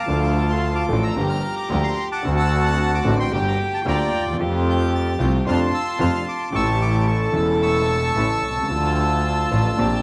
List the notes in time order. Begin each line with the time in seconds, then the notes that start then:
Already playing: F5 A5 D6
0.06 D2 D3 F3 A3 D4 F4 A4
0.50 C6
0.75 D6
0.88 A1 A2 F3 A3 D4 F4 A4
1.03 A#5 E6
1.16 G1 G2 F3 A#3 D4 F4 G4
1.30 F6
1.56 D6
1.70 D2 D3 F3 A#3 D4 F4 G4
1.84 C6
2.12 F#5 A5 D6
2.23 D2 D3 A3 C4 D4 F#4
2.27 F#4
2.39 E6
2.67 F#6
2.95 D6
3.04 A1 A2 D3 A3 C4 D4 F#4
3.20 G5 C6
3.31 G1 G2 D3 G3 A#3 D4 G4
3.47 A#5
3.74 A5
3.85 D2 D3 G3 A#3 D4 F4 G4 D5 G5 A#5
4.13 D#2
4.19 D2
4.26 D#2
4.33 E2
4.37 F2 C3 F3 A3 C4 F4 G4
4.42 F4
4.70 G6
4.95 A6
5.19 C2 C3 F3 A3 C4 F4 G6
5.46 F2 C3 F3 A3 C4 D4 F4 A5 C6 F6
5.74 E6
5.99 F2 C3 F3 A3 C4 D4 F4 F6
6.28 D6
6.50 A1 A2 C#3 E3 A3 C#4 E4 G4
6.55 E4 A5 C#6 E6
6.81 D6
7.06 A4 C#6
7.31 E1 E2 C#3 E3 A3 C#4 E4
7.35 E4 E6
7.62 A5 C#6 E6
8.15 A1 A2 C#3 E3 A3 C#4 E4
8.43 C2
8.50 B1
8.57 C2
8.63 C#2
8.68 D2 D3 F3 A3 D4 F4
8.72 F4
9.51 A1 A2 D3 F3 A3 D4 F4
9.77 A#1 A#2 C3 F3 A#3 C4 D4 G4